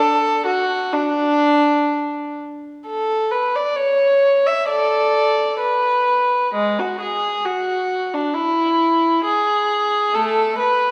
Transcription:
0.00 0.46 A4 medium
0.46 0.93 F#4 medium
0.93 2.38 D4 medium
2.87 3.30 A4 medium
3.31 3.55 B4 medium
3.56 3.79 D5 medium
3.76 4.46 C#5 medium
4.46 4.70 E5 medium
4.69 5.56 A4 medium
4.69 5.58 D5 medium
5.60 6.52 B4 medium
6.54 6.78 G#3 medium
6.79 7.02 F#4 medium
7.01 7.45 G#4 medium
7.45 8.13 F#4 medium
8.14 8.36 D4 medium
8.34 9.25 E4 medium
9.25 10.12 G#4 medium
10.14 10.56 A3 soft
10.14 10.58 A4 medium
10.58 10.91 B4 medium

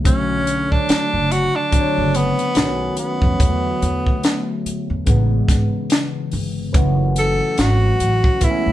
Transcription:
0.04 0.69 B1 medium
0.04 1.22 D3 medium
0.04 1.23 F#3 medium
0.04 1.23 A3 medium
0.04 0.73 C#4 medium
0.04 1.23 C#5 medium
0.04 kick loud
0.04 closed hi-hat medium
0.47 closed hi-hat medium
0.72 1.33 D4 medium
0.72 kick medium
0.89 muted upright bass stroke soft
0.89 snare medium
0.89 closed hi-hat medium
1.14 1.45 F#1 medium
1.31 1.57 F#4 medium
1.31 closed hi-hat medium
1.55 2.17 D4 medium
1.71 2.55 D3 medium
1.71 2.54 F#3 medium
1.71 2.55 A3 medium
1.71 1.81 C4 medium
1.71 muted upright bass stroke soft
1.71 kick medium
1.71 closed hi-hat medium
1.80 2.60 C#5 medium
1.98 2.29 F#1 medium
2.15 2.98 B3 medium
2.15 closed hi-hat medium
2.39 closed hi-hat soft
2.54 2.88 B1 medium
2.54 3.25 D#3 medium
2.54 3.25 F#3 medium
2.54 3.26 A3 medium
2.54 2.64 B3 medium
2.54 snare loud
2.54 closed hi-hat medium
2.64 3.30 C#4 medium
2.97 4.62 B3 medium
2.97 closed hi-hat medium
3.22 3.35 F2 medium
3.22 kick medium
3.38 3.72 E2 loud
3.38 4.56 D3 medium
3.38 4.57 F#3 medium
3.38 4.58 A3 medium
3.38 4.58 B3 medium
3.38 kick loud
3.38 closed hi-hat medium
3.82 4.14 E2 medium
3.82 closed hi-hat medium
4.07 kick medium
4.23 snare medium
4.23 closed hi-hat medium
4.66 muted upright bass stroke soft
4.66 closed hi-hat medium
4.90 5.03 E2 medium
5.06 5.39 A1 medium
5.06 6.24 C#3 medium
5.06 6.25 E3 medium
5.06 6.25 G#3 medium
5.06 6.26 B3 medium
5.06 kick medium
5.06 closed hi-hat medium
5.48 5.67 G#1 medium
5.48 kick medium
5.48 snare soft
5.48 closed hi-hat medium
5.90 snare medium
5.90 closed hi-hat medium
6.31 6.65 G1 medium
6.31 open hi-hat soft
6.72 7.38 F#1 medium
6.72 7.91 E3 medium
6.72 7.91 F#3 medium
6.72 7.92 A3 medium
6.72 7.93 C#4 medium
6.72 8.72 F#5 medium
6.72 kick loud
6.72 closed hi-hat medium
7.16 7.56 A4 medium
7.16 closed hi-hat medium
7.58 7.90 G#1 medium
7.58 8.45 F#4 medium
7.58 snare medium
7.58 closed hi-hat medium
8.00 8.19 A1 medium
8.00 closed hi-hat medium
8.24 kick medium
8.40 8.72 E3 medium
8.40 8.72 G#3 medium
8.40 8.72 A3 medium
8.40 8.50 B3 medium
8.40 8.72 E4 medium
8.40 muted upright bass stroke soft
8.40 kick medium
8.40 closed hi-hat medium
8.50 8.72 C#4 medium
8.66 8.72 C#2 medium

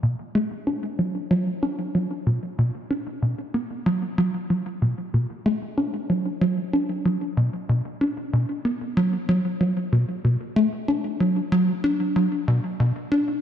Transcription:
0.03 0.15 B2 medium
0.35 0.47 A3 medium
0.67 0.87 D4 medium
0.99 1.19 F#3 medium
1.31 1.51 F#3 loud
1.63 1.93 D4 medium
1.95 2.07 F#3 medium
2.27 2.39 B2 medium
2.58 2.71 B2 medium
2.90 3.11 D4 medium
3.22 3.35 B2 medium
3.54 3.75 B3 medium
3.86 4.07 F#3 loud
4.18 4.30 F#3 loud
4.50 4.62 F#3 medium
4.82 4.94 B2 medium
5.14 5.26 B2 medium
5.46 5.58 A3 medium
5.78 5.98 D4 medium
6.10 6.30 F#3 medium
6.41 6.62 F#3 medium
6.73 7.04 D4 medium
7.05 7.18 F#3 medium
7.37 7.49 B2 medium
7.69 7.81 B2 medium
8.01 8.22 D4 medium
8.33 8.45 B2 medium
8.65 8.85 B3 medium
8.97 9.17 F#3 loud
9.29 9.41 F#3 loud
9.61 9.73 F#3 medium
9.92 10.05 B2 medium
10.24 10.37 B2 medium
10.56 10.69 A3 medium
10.88 11.09 D4 medium
11.20 11.41 F#3 medium
11.52 11.73 F#3 medium
11.84 12.14 D4 medium
12.16 12.28 F#3 medium
12.48 12.60 B2 medium
12.80 12.92 B2 medium
13.12 13.32 D4 medium

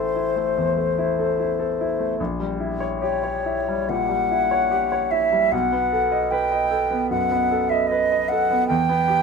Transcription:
0.00 0.52 A1 soft
0.00 0.36 A3 soft
0.00 0.16 E4 soft
0.00 1.19 A4 soft
0.00 2.15 C5 soft
0.16 0.48 E4 soft
0.36 0.68 A3 soft
0.57 0.89 E2 soft
0.77 1.10 A3 soft
0.98 1.30 E4 soft
1.19 1.51 A4 soft
1.40 1.71 E4 soft
1.59 1.91 A4 soft
1.81 2.12 E4 soft
1.99 2.19 A3 soft
2.20 3.85 A#1 soft
2.40 2.73 G3 soft
2.60 2.93 E4 soft
2.80 3.14 C#5 soft
3.01 3.36 G4 soft
3.01 3.90 C#5 medium
3.23 3.59 C#5 soft
3.46 3.81 E4 soft
3.68 4.02 G3 soft
3.89 4.22 A#2 soft
3.89 5.12 F#5 medium
4.09 4.42 G3 soft
4.31 4.63 E4 soft
4.51 4.84 C#5 soft
4.71 5.04 G4 soft
4.92 5.24 C#5 soft
5.11 5.44 E4 soft
5.11 5.53 E5 medium
5.32 5.52 G3 soft
5.52 7.06 B1 soft
5.52 6.32 F#5 medium
5.72 6.04 B3 soft
5.92 6.24 A4 soft
6.12 6.43 D#5 soft
6.31 6.63 B4 soft
6.31 7.09 G5 medium
6.52 6.83 D#5 soft
6.71 7.02 A4 soft
6.91 7.22 B3 soft
7.10 7.42 F#2 soft
7.10 7.71 F#5 medium
7.31 7.63 B3 soft
7.51 7.83 A4 soft
7.69 8.03 D#5 soft
7.69 7.89 E5 medium
7.87 8.30 D#5 medium
7.91 8.23 B4 soft
8.12 8.43 D#5 soft
8.28 8.62 A4 soft
8.28 8.67 F#5 medium
8.50 8.70 B3 soft
8.67 9.22 E2 soft
8.67 9.22 G5 medium
8.89 9.20 B3 soft
9.08 9.22 G4 soft

